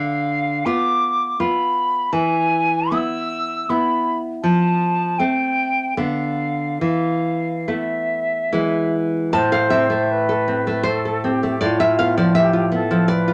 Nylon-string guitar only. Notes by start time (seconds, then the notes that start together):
Already playing: D3
0.66 B3 F4
1.40 B3 F4
2.13 E3
2.91 B3 E4
3.69 B3 E4
4.44 F3
5.20 A3 C4
5.97 D3 B3
6.81 E3
7.68 A3 B3
8.53 E3 G#3 B3
9.33 A2 A5
9.52 A4 F5
9.70 C4 E5
9.90 A3
10.29 A4
10.48 C4
10.67 A3
10.83 C5
11.05 A4
11.24 C4
11.43 A3
11.61 A2 D5
11.80 F4 E5
11.99 B3 F5
12.17 F3 D5
12.35 E5
12.53 F4
12.72 B3
12.91 F3
13.08 D5
13.28 F4